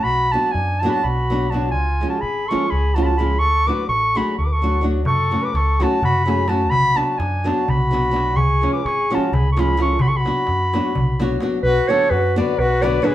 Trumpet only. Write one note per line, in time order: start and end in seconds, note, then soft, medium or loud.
0.01 0.31 F#4 loud
0.31 0.55 F#4 medium
0.54 0.84 D4 medium
0.82 0.90 F#4 medium
0.88 1.02 F#4 medium
0.88 0.94 G#4 medium
1.02 1.49 F#4 medium
1.49 1.69 F#4 medium
1.70 2.06 F4 medium
2.08 2.20 F#4 medium
2.19 2.48 G#4 medium
2.47 2.68 A4 medium
2.67 2.96 G#4 loud
2.95 3.05 F#4 medium
3.03 3.18 F#4 medium
3.03 3.08 G#4 medium
3.17 3.41 G#4 medium
3.39 3.69 A4 loud
3.67 3.87 B4 medium
3.88 4.17 A4 medium
4.15 4.37 G#4 medium
4.38 4.48 A4 medium
4.46 4.54 B4 medium
4.53 4.84 A4 medium
5.06 5.44 A4 loud
5.43 5.55 B4 medium
5.54 5.81 A4 medium
5.80 6.01 F#4 medium
6.02 6.25 F#4 loud
6.26 6.49 G#4 medium
6.48 6.68 F#4 medium
6.68 6.99 F#4 medium
6.99 7.21 F#4 medium
7.19 7.51 D4 medium
7.50 7.70 F#4 medium
7.70 8.38 F#4 medium
8.37 8.74 G#4 loud
8.74 8.85 B4 medium
8.83 9.14 G#4 loud
9.12 9.35 F#4 medium
9.33 9.51 G#4 medium
9.52 9.61 A4 medium
9.60 9.80 G#4 medium
9.81 10.03 A4 medium
10.02 10.11 F#4 medium
10.09 10.19 A4 medium
10.17 11.43 F#4 medium
11.64 11.92 F#4 loud
11.91 12.13 A4 loud
12.11 12.37 F#4 medium
12.39 12.61 B4 loud
12.60 12.85 F#4 loud
12.84 13.07 B4 loud
13.06 13.15 G#4 medium